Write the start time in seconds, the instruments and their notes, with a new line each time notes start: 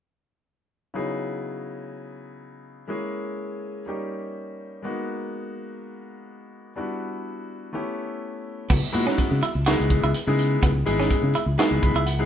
0.94 grand piano C#3 F#3 B3 D#4 E4 G#4
2.88 grand piano G#3 A#3 C#4 E4 G#4
3.86 grand piano G3 A#3 C#4 D#4 G4
4.82 grand piano G#3 A#3 B3 D#4 F#4
6.76 grand piano G3 B3 D4 E4 F#4
7.73 grand piano A3 B3 C#4 E4 G4
8.70 fingered electric bass C#2, clean electric guitar B3, kick, crash
8.92 fingered electric bass A#2, grand piano G#3 B3 D#4 E4 F#4, closed hi-hat
9.07 clean electric guitar C#4, snare
9.18 muted fingered electric bass stroke, kick, closed hi-hat
9.31 fingered electric bass C#3
9.43 clean electric guitar E4, muted fingered electric bass stroke, closed hi-hat
9.55 fingered electric bass C#2
9.66 grand piano G#3 B3 D#4 E4 G#4, clean electric guitar F#4, snare, closed hi-hat
9.80 fingered electric bass C#2
9.90 kick, closed hi-hat
10.03 fingered electric bass C#2, clean electric guitar E4
10.14 closed hi-hat
10.27 fingered electric bass C#3, grand piano G#3 B3 D#4 E4 G#4
10.39 closed hi-hat
10.62 fingered electric bass C#2, clean electric guitar B3, kick, closed hi-hat
10.85 fingered electric bass G#1, grand piano G#3 B3 D#4 E4 G#4, closed hi-hat
11.00 clean electric guitar C#4, snare
11.11 kick, closed hi-hat
11.23 fingered electric bass C#3
11.35 clean electric guitar E4, closed hi-hat
11.46 fingered electric bass C#2
11.58 grand piano G#3 B3 D#4 E4 G#4, clean electric guitar F#4, snare, closed hi-hat
11.71 fingered electric bass C#2
11.82 fingered electric bass C#2, grand piano B5, kick, closed hi-hat
11.95 fingered electric bass C#2, clean electric guitar E4
12.06 grand piano F#5, closed hi-hat
12.19 grand piano G#3 B3 D#4 E4 G#4